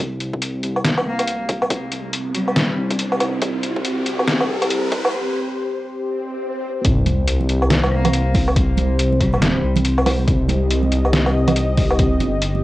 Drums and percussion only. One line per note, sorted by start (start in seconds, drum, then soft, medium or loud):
0.20 closed hi-hat soft
0.33 kick medium
0.42 closed hi-hat medium
0.63 closed hi-hat medium
0.76 low woodblock soft
0.85 snare loud
0.85 closed hi-hat medium
0.98 low woodblock medium
1.19 closed hi-hat medium
1.19 low woodblock soft
1.28 closed hi-hat medium
1.49 kick loud
1.49 closed hi-hat medium
1.62 low woodblock medium
1.70 kick loud
1.70 closed hi-hat medium
1.92 closed hi-hat soft
2.13 closed hi-hat medium
2.35 closed hi-hat medium
2.48 low woodblock soft
2.56 snare loud
2.56 closed hi-hat medium
2.91 kick medium
2.91 closed hi-hat medium
2.99 closed hi-hat medium
3.12 low woodblock medium
3.20 closed hi-hat medium
3.20 low woodblock medium
3.42 kick loud
3.42 closed hi-hat medium
3.63 closed hi-hat medium
3.76 kick medium
3.85 closed hi-hat medium
4.06 closed hi-hat medium
4.19 low woodblock medium
4.28 snare loud
4.28 closed hi-hat medium
4.41 low woodblock medium
4.62 closed hi-hat medium
4.62 low woodblock medium
4.70 closed hi-hat medium
4.92 kick loud
4.92 closed hi-hat medium
5.05 low woodblock medium
6.85 kick loud
6.85 closed hi-hat medium
7.06 closed hi-hat medium
7.06 high conga loud
7.28 closed hi-hat medium
7.41 high conga medium
7.49 closed hi-hat medium
7.62 low woodblock medium
7.70 snare loud
7.70 closed hi-hat medium
7.70 high conga medium
7.84 low woodblock medium
8.05 closed hi-hat medium
8.05 high conga medium
8.05 low conga loud
8.05 low woodblock medium
8.13 closed hi-hat medium
8.34 kick loud
8.34 open hi-hat medium
8.34 high conga loud
8.48 low woodblock medium
8.56 kick loud
8.56 closed hi-hat medium
8.77 closed hi-hat medium
8.77 high conga loud
8.99 closed hi-hat medium
9.12 high conga medium
9.21 kick medium
9.21 closed hi-hat medium
9.33 muted conga soft
9.33 low woodblock medium
9.42 snare loud
9.42 closed hi-hat medium
9.42 high conga medium
9.76 closed hi-hat medium
9.76 high conga medium
9.76 low conga loud
9.85 closed hi-hat medium
9.98 low woodblock medium
10.06 open hi-hat medium
10.06 high conga loud
10.06 low woodblock medium
10.19 muted conga soft
10.28 kick loud
10.28 closed hi-hat medium
10.49 closed hi-hat soft
10.49 high conga loud
10.71 closed hi-hat medium
10.83 high conga medium
10.92 closed hi-hat medium
11.05 low woodblock medium
11.13 snare loud
11.13 closed hi-hat medium
11.13 high conga loud
11.26 low woodblock medium
11.48 closed hi-hat medium
11.48 high conga medium
11.48 low conga loud
11.48 low woodblock medium
11.56 closed hi-hat medium
11.77 kick loud
11.77 open hi-hat medium
11.77 high conga medium
11.91 low woodblock medium
11.99 kick loud
11.99 closed hi-hat medium
12.20 closed hi-hat medium
12.20 muted conga medium
12.20 high conga loud
12.42 closed hi-hat medium
12.55 high conga medium